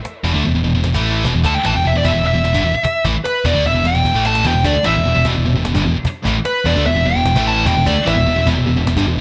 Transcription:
0.05 cajon slap
0.24 picked electric bass E1, distorted electric guitar E2 B2, cajon bass
0.34 picked electric bass D2, distorted electric guitar D3 A3
0.44 picked electric bass E1, distorted electric guitar E2 B2
0.55 picked electric bass E1, distorted electric guitar E2 B2
0.64 picked electric bass E1, distorted electric guitar E2 B2
0.75 picked electric bass E1, distorted electric guitar E2 B2
0.84 picked electric bass E1, distorted electric guitar E2 B2, cajon slap
0.94 picked electric bass A1, distorted electric guitar A2 E3 A3, cajon bass
1.25 picked electric bass E1, distorted electric guitar E2 B2, cajon bass
1.34 picked electric bass E1, distorted electric guitar E2 B2
1.44 picked electric bass D2, distorted electric guitar D3 A3, lead electric guitar A5, cajon bass
1.53 lead electric guitar G5, muted distorted electric guitar stroke, muted overdriven electric guitar stroke, muted picked electric bass stroke
1.64 picked electric bass A1, distorted electric guitar A2 E3, lead electric guitar A5, cajon slap
1.74 picked electric bass E1, distorted electric guitar E2 B2, lead electric guitar G5
1.85 picked electric bass E1, distorted electric guitar E2 B2, lead electric guitar E5
1.94 picked electric bass E1, distorted electric guitar E2 B2, lead electric guitar D5
2.04 picked electric bass E1, distorted electric guitar E2 B2, lead electric guitar E5, cajon bass
2.14 picked electric bass E1, distorted electric guitar E2 B2
2.24 picked electric bass E1, distorted electric guitar E2 B2, lead electric guitar E5
2.34 picked electric bass E1, distorted electric guitar E2 B2
2.44 picked electric bass E1, distorted electric guitar E2 B2, cajon slap
2.55 picked electric bass G1, distorted electric guitar G2 D3, cajon bass
2.64 picked electric bass E1, distorted electric guitar E2 B2
2.74 muted distorted electric guitar stroke, muted overdriven electric guitar stroke, muted picked electric bass stroke
2.84 muted distorted electric guitar stroke, muted picked electric bass stroke, muted overdriven electric guitar stroke, cajon bass
3.05 picked electric bass A1, distorted electric guitar A2 E3, cajon bass
3.24 lead electric guitar B4, cajon slap
3.45 picked electric bass E1, distorted electric guitar E2 B2, lead electric guitar D5, cajon bass
3.55 picked electric bass D2, distorted electric guitar D3 A3
3.65 picked electric bass E1, distorted electric guitar E2 B2, lead electric guitar E5, cajon slap
3.75 picked electric bass E1, distorted electric guitar E2 B2
3.84 picked electric bass E1, distorted electric guitar E2 B2, lead electric guitar G5, cajon slap
3.95 picked electric bass E1, distorted electric guitar E2 B2, cajon slap
4.05 picked electric bass E1, distorted electric guitar E2 B2, cajon bass
4.14 picked electric bass A1, distorted electric guitar A2 E3 A3
4.25 lead electric guitar A5, cajon slap
4.35 cajon slap
4.44 picked electric bass E1, distorted electric guitar E2 B2, lead electric guitar G5, cajon bass
4.55 picked electric bass E1, distorted electric guitar E2 B2
4.64 picked electric bass D2, distorted electric guitar D3 A3, lead electric guitar D5, cajon bass
4.76 muted distorted electric guitar stroke, muted overdriven electric guitar stroke, muted picked electric bass stroke
4.84 picked electric bass A1, distorted electric guitar A2 E3, lead electric guitar E5, cajon slap
4.96 picked electric bass E1, distorted electric guitar E2 B2
5.05 picked electric bass E1, distorted electric guitar E2 B2
5.15 picked electric bass E1, distorted electric guitar E2 B2
5.25 picked electric bass E1, distorted electric guitar E2 B2, cajon bass
5.36 picked electric bass E1, distorted electric guitar E2 B2
5.45 picked electric bass E1, distorted electric guitar E2 B2
5.56 picked electric bass E1, distorted electric guitar E2 B2
5.65 picked electric bass E1, distorted electric guitar E2 B2, cajon slap
5.75 picked electric bass G1, distorted electric guitar G2 D3, cajon bass
5.86 picked electric bass E1, distorted electric guitar E2 B2
5.95 muted overdriven electric guitar stroke, muted distorted electric guitar stroke, muted picked electric bass stroke
6.05 muted overdriven electric guitar stroke, muted picked electric bass stroke, muted distorted electric guitar stroke, cajon bass
6.23 picked electric bass A1, overdriven electric guitar A2, cajon bass
6.27 distorted electric guitar A2 E3
6.45 lead electric guitar B4, cajon slap
6.65 picked electric bass E1, distorted electric guitar E2 B2, lead electric guitar D5, cajon bass
6.77 picked electric bass D2, distorted electric guitar D3 A3
6.86 picked electric bass E1, distorted electric guitar E2 B2, lead electric guitar E5
6.96 picked electric bass E1, distorted electric guitar E2 B2
7.06 picked electric bass E1, distorted electric guitar E2 B2, lead electric guitar G5
7.16 picked electric bass E1, distorted electric guitar E2 B2
7.26 picked electric bass E1, distorted electric guitar E2 B2, cajon slap
7.36 picked electric bass A1, distorted electric guitar A2 E3 A3, cajon bass
7.47 lead electric guitar A5
7.66 picked electric bass E1, distorted electric guitar E2 B2, lead electric guitar G5, cajon bass
7.76 picked electric bass E1, distorted electric guitar E2 B2
7.86 picked electric bass D2, distorted electric guitar D3 A3, lead electric guitar D5, cajon bass
7.95 muted overdriven electric guitar stroke, muted distorted electric guitar stroke, muted picked electric bass stroke
8.06 picked electric bass A1, distorted electric guitar A2 E3, lead electric guitar E5, cajon slap
8.17 picked electric bass E1, distorted electric guitar E2 B2
8.26 picked electric bass E1, distorted electric guitar E2 B2
8.36 picked electric bass E1, distorted electric guitar E2 B2
8.47 picked electric bass E1, distorted electric guitar E2 B2, cajon bass
8.57 picked electric bass E1, distorted electric guitar E2 B2
8.67 picked electric bass E1, distorted electric guitar E2 B2
8.77 picked electric bass E1, distorted electric guitar E2 B2
8.87 picked electric bass E1, distorted electric guitar E2 B2, cajon slap
8.97 picked electric bass G1, distorted electric guitar G2 D3, cajon bass
9.08 picked electric bass E1, distorted electric guitar E2 B2
9.16 muted overdriven electric guitar stroke, muted picked electric bass stroke

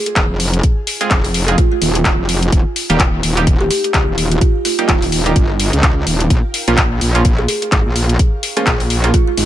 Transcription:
Already playing: ambient pad F4 G#5
0.06 kalimba G#4, closed hi-hat
0.16 wobble bass D#1, kick, clap, closed hi-hat
0.30 wobble bass F1
0.40 open hi-hat
0.53 closed hi-hat
0.63 kick, closed hi-hat
0.87 open hi-hat
1.01 synth stab G#3 C4 F4 G#4, kalimba G#4, closed hi-hat
1.11 wobble bass F1, kick, clap, closed hi-hat
1.24 open hi-hat
1.34 open hi-hat
1.48 synth stab G#3 C4 F4 G#4, closed hi-hat
1.58 kalimba F4, kick, closed hi-hat
1.72 kalimba F4
1.81 wobble bass D#1, open hi-hat
1.95 closed hi-hat
2.05 wobble bass D#1, kick, clap, closed hi-hat
2.19 wobble bass F1
2.29 open hi-hat
2.43 closed hi-hat
2.52 wobble bass D#1, ambient pad D#4, kick, closed hi-hat
2.68 ambient pad A#4
2.76 open hi-hat
2.90 wobble bass D#1, synth stab G3 A#3 D#4 G4, closed hi-hat
3.00 kick, clap, closed hi-hat
3.11 ambient pad F5
3.23 wobble bass D#1, open hi-hat
3.37 synth stab G3 A#3 D#4 G4, closed hi-hat
3.42 ambient pad G5
3.47 kick, closed hi-hat
3.61 kalimba G4
3.70 kalimba G4, open hi-hat
3.84 kalimba G4, closed hi-hat
3.94 wobble bass C#2, kick, clap, closed hi-hat
4.08 wobble bass D#1
4.18 open hi-hat
4.31 kalimba F4, closed hi-hat
4.41 kalimba F4, kick, closed hi-hat
4.65 kalimba F4, open hi-hat
4.79 synth stab G3 A#3 D#4 G4, kalimba F4, closed hi-hat
4.89 wobble bass D#1, kalimba F4, kick, clap, closed hi-hat
5.02 open hi-hat
5.12 open hi-hat
5.26 synth stab G3 A#3 D#4 G4, closed hi-hat
5.36 wobble bass G1, kick, closed hi-hat
5.60 open hi-hat
5.73 wobble bass C#2, closed hi-hat
5.83 kick, clap, closed hi-hat
6.07 wobble bass D#1, open hi-hat
6.20 closed hi-hat
6.30 wobble bass A#1, kick, closed hi-hat
6.54 open hi-hat
6.68 wobble bass A#1, synth stab F3 A#3 C#4 F4, closed hi-hat
6.78 kick, clap, closed hi-hat
7.01 wobble bass A#1, open hi-hat
7.15 synth stab F3 A#3 C#4 F4, closed hi-hat
7.25 kick, closed hi-hat
7.39 kalimba G#4
7.48 kalimba G#4, open hi-hat
7.62 kalimba G#4, closed hi-hat
7.72 wobble bass G#1, kick, clap, closed hi-hat
7.81 ambient pad C#6
7.86 wobble bass A#1
7.96 open hi-hat
8.09 closed hi-hat
8.19 kick, closed hi-hat
8.43 open hi-hat
8.57 synth stab F3 A#3 C#4 F4, kalimba G#4, closed hi-hat
8.67 wobble bass A#1, kick, clap, closed hi-hat
8.80 open hi-hat
8.90 open hi-hat
9.04 synth stab F3 A#3 C#4 F4, closed hi-hat
9.14 kalimba F4, kick, closed hi-hat
9.27 kalimba F4
9.37 wobble bass G#1, open hi-hat

